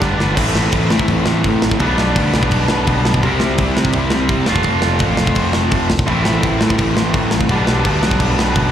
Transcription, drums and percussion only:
0.02 kick, snare
0.20 snare
0.37 kick, crash
0.55 snare
0.72 kick, crash
0.90 snare
0.99 kick
1.08 kick, crash
1.26 snare
1.44 kick, crash
1.62 snare
1.71 kick
1.79 kick, crash
1.98 snare
2.16 kick, crash
2.34 snare
2.43 kick
2.51 kick, crash
2.68 snare
2.87 kick, crash
3.05 snare
3.14 kick
3.23 kick, crash
3.40 snare
3.58 kick, crash
3.77 snare
3.85 kick
3.92 kick, crash
4.10 snare
4.29 kick, crash
4.46 snare
4.56 kick
4.63 kick, crash
4.82 snare
4.99 kick, crash
5.17 snare
5.27 kick
5.35 kick, crash
5.53 snare
5.71 kick, crash
5.90 snare
5.99 kick
6.07 kick, crash
6.25 snare
6.43 kick, crash
6.61 snare
6.70 kick
6.78 kick, crash
6.97 snare
7.14 kick, crash
7.31 snare
7.41 kick
7.49 kick, crash
7.67 snare
7.85 kick, crash
8.03 snare
8.11 kick
8.20 kick, crash
8.39 snare
8.55 kick, crash

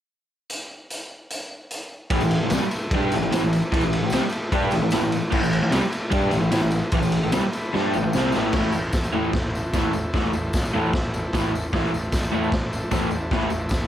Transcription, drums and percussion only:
0.50 closed hi-hat
0.90 closed hi-hat
1.30 closed hi-hat
1.71 closed hi-hat
2.10 kick, ride, tambourine
2.21 tambourine
2.31 ride
2.50 snare, ride, tambourine
2.71 ride, tambourine
2.91 kick, ride
3.02 tambourine
3.12 ride, tambourine
3.23 tambourine
3.32 snare, ride, tambourine
3.53 ride, tambourine
3.62 tambourine
3.72 kick, ride, tambourine
3.81 tambourine
3.93 ride
4.10 snare, ride, tambourine
4.29 ride, tambourine
4.52 kick, ride
4.61 tambourine
4.71 ride, tambourine
4.91 snare, ride, tambourine
5.12 ride, tambourine
5.22 tambourine
5.32 kick, crash
5.43 tambourine
5.53 ride
5.72 snare, ride, tambourine
5.92 ride, tambourine
6.11 kick, ride
6.22 tambourine
6.31 ride, tambourine
6.43 tambourine
6.51 snare, ride, tambourine
6.71 ride, tambourine
6.82 tambourine
6.92 kick, ride, tambourine
7.03 tambourine
7.12 ride, tambourine
7.23 tambourine
7.32 snare, ride, tambourine
7.53 ride, tambourine
7.74 snare, tambourine
7.94 tambourine
8.13 snare, tambourine
8.23 tambourine
8.32 snare, tambourine
8.52 kick, snare, floor tom, crash, tambourine
8.72 floor tom, tambourine
8.84 tambourine
8.93 kick, snare, floor tom, tambourine
9.04 tambourine
9.14 floor tom
9.24 tambourine
9.33 kick, snare, floor tom
9.53 floor tom, tambourine
9.73 kick, snare, floor tom, tambourine
9.93 floor tom, tambourine
10.13 kick, snare, floor tom, tambourine
10.25 tambourine
10.33 floor tom, tambourine
10.53 kick, snare, floor tom, tambourine
10.65 tambourine
10.75 floor tom
10.85 tambourine
10.93 kick, snare, floor tom
11.13 floor tom, tambourine
11.33 kick, snare, floor tom, tambourine
11.54 floor tom, tambourine
11.73 kick, snare, floor tom, tambourine
11.86 tambourine
11.93 floor tom, tambourine
12.04 tambourine
12.12 kick, snare, floor tom, tambourine
12.23 tambourine
12.32 floor tom
12.44 tambourine
12.52 kick, snare, floor tom
12.72 floor tom, tambourine
12.91 kick, snare, floor tom, tambourine
13.11 floor tom, tambourine
13.31 kick, snare, floor tom, tambourine
13.42 tambourine
13.50 floor tom, tambourine
13.61 tambourine
13.69 kick, snare, floor tom, tambourine

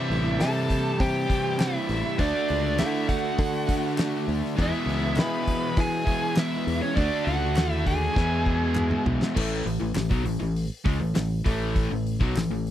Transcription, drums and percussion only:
0.11 open hi-hat
0.41 snare, clap, open hi-hat
0.70 kick, open hi-hat
1.00 kick, open hi-hat
1.30 kick, open hi-hat
1.60 snare, clap, open hi-hat
1.89 open hi-hat
2.19 kick, open hi-hat
2.48 open hi-hat
2.78 snare, clap, open hi-hat
3.09 kick, open hi-hat
3.38 kick, open hi-hat
3.69 kick, open hi-hat
3.98 snare, clap, open hi-hat
4.29 open hi-hat
4.45 snare
4.58 kick, open hi-hat
4.89 open hi-hat
5.16 snare, clap, open hi-hat
5.47 kick, open hi-hat
5.77 kick, open hi-hat
6.07 kick, open hi-hat
6.36 snare, clap, open hi-hat
6.68 open hi-hat
6.97 kick, open hi-hat
7.27 open hi-hat
7.56 snare, clap, open hi-hat
7.86 kick, open hi-hat
8.16 kick, snare
8.46 kick
8.75 clap, mid tom
8.91 mid tom
9.06 floor tom
9.22 snare
9.36 kick, crash
9.67 open hi-hat
9.95 snare, clap, open hi-hat
10.11 kick
10.26 open hi-hat
10.56 open hi-hat
10.85 kick, open hi-hat
11.16 snare, clap, open hi-hat
11.46 kick, open hi-hat
11.76 kick, open hi-hat
12.07 open hi-hat
12.21 kick
12.36 snare, clap, open hi-hat
12.67 open hi-hat

